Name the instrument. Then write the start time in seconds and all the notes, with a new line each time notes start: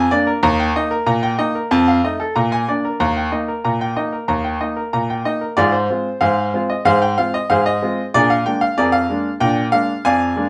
grand piano
Already playing: G#5
0.11 A#3 D4 D5
0.27 A#4
0.43 D#2 A#5
0.59 G5
0.76 A#3 D#4 D#5
0.91 A#4
1.06 A#2 A#5
1.23 G5
1.39 A#3 D#4 D#5
1.55 A#4
1.71 F2 A5
1.88 F5
2.04 A3 D#4 D#5
2.20 A4
2.36 A#2 A#5
2.52 G#5
2.68 A#3 D4 D5
2.85 A#4
3.00 D#2 A#5
3.17 G5
3.32 A#3 D#4 D#5
3.48 A#4
3.65 A#2 A#5
3.81 G5
3.97 A#3 D#4 D#5
4.13 A#4
4.28 D#2 A#5
4.44 G5
4.61 A#3 D#4 D#5
4.76 A#4
4.93 A#2 A#5
5.10 G5
5.25 A#3 D#4 D#5
5.41 A#4
5.57 G#2 F4 G#4 D5
5.72 C5
5.90 G#3 C4 F4
6.21 G#2 G#4 C5 F5
6.54 G#3 C4 F4
6.70 D#5
6.85 G#2 G#4 C5 F5
7.02 G5
7.18 G#3 C4 F4 F5
7.34 D#5
7.50 G#2 G#4 C5 F5
7.66 D#5
7.82 G#3 C4 F4
8.14 A#2 D4 G#4 A#4 D5
8.30 F5
8.46 G#3 A#3 D4 G5
8.61 F5
8.77 F2 G#4 A#4 D5
8.92 F5
9.10 G#3 A#3 D4
9.40 A#2 D4 G5
9.72 G#3 A#3 D4 F5
10.05 F2 D5 F5 G#5
10.36 G#3 A#3 D4